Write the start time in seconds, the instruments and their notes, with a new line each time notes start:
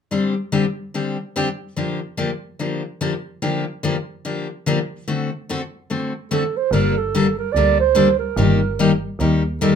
0.11 steel-string acoustic guitar D3 G3 C4 D4 G4
0.52 steel-string acoustic guitar D3 G3 C4 D4 G4
0.94 steel-string acoustic guitar D3 G3 C4 D4 G4
1.36 steel-string acoustic guitar D3 G3 C4 D4 G4
1.76 steel-string acoustic guitar D3 F3 A#3 D4 G4
2.17 steel-string acoustic guitar D3 F3 A#3 D4 G4
2.59 steel-string acoustic guitar D3 F3 A#3 D4 G4
3.01 steel-string acoustic guitar D3 F3 A#3 D4 G4
3.42 steel-string acoustic guitar D3 F3 A#3 D4 G4
3.83 steel-string acoustic guitar D3 F3 A#3 D4 G4
4.25 steel-string acoustic guitar D3 F3 A#3 D4 G4
4.66 steel-string acoustic guitar D3 F3 A#3 D4 G4
5.08 steel-string acoustic guitar D3 A3 C4 F#4 A4
5.49 steel-string acoustic guitar D3 A3 C4 F#4 A4
5.90 steel-string acoustic guitar D3 A3 C4 F#4 A4
6.31 steel-string acoustic guitar D3 A3 C4 F#4 A4, clarinet A4
6.57 clarinet C5
6.71 double bass G1, steel-string acoustic guitar D3 G3 A#3 D4 A4, clarinet A#4
6.98 clarinet A4
7.15 steel-string acoustic guitar D3 G3 A#3 D4 A4
7.39 clarinet A#4
7.53 double bass D2, steel-string acoustic guitar D3 G3, clarinet D5
7.57 steel-string acoustic guitar A#3 D4 A4
7.80 clarinet C5
7.95 steel-string acoustic guitar D3 G3 A#3 D4 A4
8.19 clarinet A#4
8.37 double bass G1, steel-string acoustic guitar D#3 G3 A#3 D#4 G4
8.79 steel-string acoustic guitar D#3 G3 A#3 D#4 G4
9.19 double bass D#2, steel-string acoustic guitar D#3 G3 A#3 D#4 G4
9.61 steel-string acoustic guitar D#3 G3 A#3 D#4 G4, clarinet A4